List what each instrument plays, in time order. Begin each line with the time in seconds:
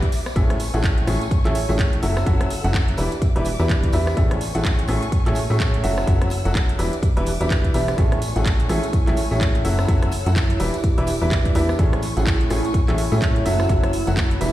Already playing: string section G4 E5 D6, analog synth pad D5
0.02 kick, closed hi-hat
0.12 open hi-hat, tambourine
0.26 cross-stick, tambourine
0.36 analog synth bass A1, grand piano A2 C#4 E4 G#4 A4 E5, string section A3 G#5 C#6, kick, closed hi-hat, tambourine
0.50 cross-stick, closed hi-hat
0.60 open hi-hat, tambourine
0.74 analog synth bass A1, grand piano A2 C#4 E4 G#4 A4 F#5, closed hi-hat, tambourine
0.84 kick, clap, closed hi-hat
0.95 analog synth pad C#5, closed hi-hat
1.07 analog synth bass A1, grand piano A2 C#4 E4 G#4 A4 E5, cross-stick, open hi-hat, tambourine
1.21 closed hi-hat, tambourine
1.31 kick, closed hi-hat, tambourine
1.45 analog synth bass A1, grand piano A2 C#4 E4 G#4 A4 E5, clap, closed hi-hat
1.55 open hi-hat, tambourine
1.69 analog synth bass A1, grand piano A2 C#4 E4 G#4 A4 E5, tambourine
1.78 kick, clap, closed hi-hat, tambourine
1.93 closed hi-hat
2.02 analog synth bass F#1, grand piano F#3 C#4 E4 F#4 A4 E5, string section A4 F#5 E6, open hi-hat, tambourine
2.17 cross-stick, tambourine
2.26 analog synth bass F#1, grand piano F#3 C#4 E4 F#4 A4 E5, kick, closed hi-hat, tambourine
2.41 cross-stick, closed hi-hat
2.50 open hi-hat, tambourine
2.64 analog synth bass F#1, grand piano F#3 C#4 E4 F#4 A4 F#5, closed hi-hat, tambourine
2.74 kick, clap, closed hi-hat
2.88 closed hi-hat
2.97 analog synth bass E1, grand piano E3 D4 E4 G4 B4 E5, string section G4 E5 D6, open hi-hat, tambourine
3.12 closed hi-hat, tambourine
3.22 kick, closed hi-hat, tambourine
3.36 analog synth bass E1, grand piano E3 D4 E4 G4 B4 E5, analog synth pad D5, closed hi-hat
3.45 open hi-hat, tambourine
3.59 analog synth bass E2, grand piano E3 D4 E4 G4 B4 E5, tambourine
3.69 kick, clap, closed hi-hat
3.83 kick, closed hi-hat
3.93 analog synth bass E2, grand piano D4 E4 G4 B4 E5, open hi-hat, tambourine
4.07 cross-stick, tambourine
4.17 analog synth bass A1, grand piano A2 C#4 E4 G#4 A4 E5, string section A3 G#5 C#6, kick, closed hi-hat, tambourine
4.31 cross-stick, closed hi-hat
4.41 open hi-hat, tambourine
4.54 analog synth bass A1, grand piano A2 C#4 E4 G#4 A4 F#5, closed hi-hat, tambourine
4.65 kick, clap, closed hi-hat
4.79 closed hi-hat
4.88 analog synth bass A1, grand piano A2 C#4 E4 G#4 A4 E5, cross-stick, open hi-hat, tambourine
4.93 analog synth pad C#5
5.02 closed hi-hat, tambourine
5.12 kick, closed hi-hat, tambourine
5.26 analog synth bass A1, grand piano A2 C#4 E4 G#4 A4 E5, clap, closed hi-hat
5.35 open hi-hat, tambourine
5.50 grand piano A2 C#4 E4 G#4 A4 E5, analog synth bass A2, tambourine
5.60 kick, clap, closed hi-hat, tambourine
5.74 closed hi-hat
5.83 analog synth bass F#1, grand piano F#3 C#4 E4 F#4 A4 E5, string section F#5 E6, open hi-hat, tambourine
5.98 cross-stick, tambourine
6.07 analog synth bass F#1, grand piano F#3 C#4 E4 F#4 A4 E5, kick, closed hi-hat
6.22 cross-stick, closed hi-hat
6.30 open hi-hat, tambourine
6.45 analog synth bass F#1, grand piano F#3 C#4 E4 F#4 A4 F#5, closed hi-hat, tambourine
6.55 kick, clap, closed hi-hat, tambourine
6.69 closed hi-hat
6.79 analog synth bass E1, grand piano E3 D4 E4 G4 B4 E5, string section G4 E5 D6, open hi-hat, tambourine
6.93 closed hi-hat, tambourine
7.03 kick, closed hi-hat, tambourine
7.17 analog synth bass E1, grand piano E3 D4 E4 G4 B4 E5, closed hi-hat
7.26 open hi-hat, tambourine
7.34 analog synth pad D5
7.40 analog synth bass E1, grand piano E3 D4 E4 G4 B4 E5, closed hi-hat, tambourine
7.50 kick, clap, closed hi-hat
7.64 kick, closed hi-hat
7.74 analog synth bass E1, grand piano D4 E4 G4 B4 E5, open hi-hat, tambourine
7.88 cross-stick, closed hi-hat, tambourine
7.98 analog synth bass A1, grand piano A2 C#4 E4 G#4 A4 E5, string section A3 G#5 C#6, analog synth pad E4, kick, closed hi-hat, tambourine
8.12 cross-stick, closed hi-hat
8.22 open hi-hat, tambourine
8.36 analog synth bass A1, grand piano A2 C#4 E4 G#4 A4 F#5, closed hi-hat, tambourine
8.46 kick, clap, closed hi-hat, tambourine
8.60 closed hi-hat
8.69 analog synth bass A1, grand piano A2 C#4 E4 G#4 A4 E5, cross-stick, open hi-hat, tambourine
8.74 analog synth pad C#5
8.83 closed hi-hat, tambourine
8.93 kick, closed hi-hat, tambourine
9.07 analog synth bass A1, grand piano A2 C#4 E4 G#4 A4 E5, clap, closed hi-hat
9.17 open hi-hat, tambourine
9.31 analog synth bass A1, grand piano A2 C#4 E4 G#4 A4 E5, tambourine
9.41 kick, clap, closed hi-hat, tambourine
9.55 closed hi-hat
9.65 analog synth bass F#1, grand piano F#3 C#4 E4 F#4 A4 E5, string section F#5 E6, open hi-hat, tambourine
9.79 cross-stick, tambourine
9.88 analog synth bass F#1, grand piano F#3 C#4 E4 F#4 A4 E5, kick, closed hi-hat, tambourine
10.02 cross-stick, closed hi-hat
10.12 open hi-hat, tambourine
10.26 analog synth bass F#2, grand piano F#3 C#4 E4 F#4 A4 F#5, closed hi-hat, tambourine
10.36 kick, clap, closed hi-hat, tambourine
10.50 closed hi-hat
10.60 analog synth bass E1, grand piano E3 D4 E4 G4 B4 E5, string section G4 E5 D6, open hi-hat, tambourine
10.74 closed hi-hat, tambourine
10.79 analog synth pad A3
10.84 kick, closed hi-hat, tambourine
10.98 analog synth bass E1, grand piano E3 D4 E4 G4 B4 E5, closed hi-hat
11.07 open hi-hat, tambourine
11.14 analog synth pad D5
11.21 analog synth bass E1, grand piano E3 D4 E4 G4 B4 E5, tambourine
11.31 kick, clap, closed hi-hat, tambourine
11.45 kick, closed hi-hat
11.55 analog synth bass E2, grand piano D4 E4 G4 B4 E5, open hi-hat, tambourine
11.69 cross-stick, tambourine
11.79 analog synth bass A1, grand piano A2 C#4 E4 G#4 A4 E5, string section A3 G#5 C#6, kick, closed hi-hat
11.93 cross-stick, closed hi-hat
12.02 open hi-hat, tambourine
12.17 analog synth bass A1, grand piano A2 C#4 E4 G#4 A4 F#5, closed hi-hat, tambourine
12.27 kick, clap, closed hi-hat, tambourine
12.41 closed hi-hat
12.50 analog synth bass A1, grand piano A2 C#4 E4 G#4 A4 E5, cross-stick, open hi-hat, tambourine
12.55 analog synth pad C#5
12.65 closed hi-hat, tambourine
12.74 kick, closed hi-hat, tambourine
12.88 analog synth bass A1, grand piano A2 C#4 E4 G#4 A4 E5, clap, closed hi-hat
12.98 open hi-hat, tambourine
13.12 grand piano A2 C#4 E4 G#4 A4 E5, analog synth bass A2, tambourine
13.21 kick, clap, closed hi-hat, tambourine
13.36 closed hi-hat
13.45 analog synth bass F#1, grand piano F#3 C#4 E4 F#4 A4 E5, string section F#5 E6, open hi-hat, tambourine
13.60 cross-stick, tambourine
13.69 analog synth bass F#1, grand piano F#3 C#4 E4 F#4 A4 E5, kick, closed hi-hat, tambourine
13.83 cross-stick, closed hi-hat
13.93 open hi-hat, tambourine
14.07 analog synth bass F#1, grand piano F#3 C#4 E4 F#4 A4 F#5, closed hi-hat, tambourine
14.17 kick, clap, closed hi-hat, tambourine
14.31 closed hi-hat
14.41 analog synth bass E1, grand piano E3 D4 E4 G4 B4 E5, string section G4 E5 D6, open hi-hat, tambourine